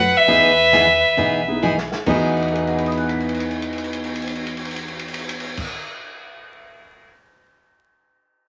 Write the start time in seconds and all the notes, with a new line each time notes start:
Already playing: F#1 B4 F#5
0.13 B4 E5, open hi-hat
0.27 E2 E3 B3 D#4 G#4, open hi-hat
0.72 E3 B3 D#4 G#4, snare, closed hi-hat
1.02 open hi-hat
1.17 B1 E3 B3 D#4 G#4, open hi-hat
1.47 B3 D#4 E4 G#4
1.62 E3 B3 D#4 G#4
1.77 snare
1.92 snare
2.06 E2 E3 B3 D#4 F#4 G#4, kick, crash
2.37 crash
2.42 ride
2.48 crash
2.52 B4, ride
2.60 D#5
2.67 F#5, crash
2.77 B5, ride
2.86 D#6, crash
2.92 ride
2.97 F#6, crash
3.09 B6, ride
3.20 crash
3.29 ride
3.34 crash
3.40 ride
3.51 crash
3.62 ride
3.73 crash
3.78 ride
3.84 crash
3.93 ride
4.04 crash
4.16 ride
4.22 crash
4.28 ride
4.35 crash
4.47 ride
4.57 crash
4.65 ride
4.71 crash
4.76 ride
4.88 crash
4.99 ride
5.08 crash
5.14 ride
5.19 crash
5.29 ride
5.40 crash
5.57 kick, crash